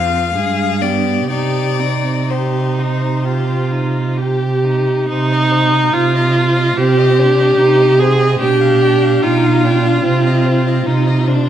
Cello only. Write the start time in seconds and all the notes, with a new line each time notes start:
Already playing: F2
0.35 G2
1.31 C3
5.10 C3
5.94 C3
6.76 C3
7.58 C3
8.40 B2
9.23 B2
10.05 C3
10.87 C3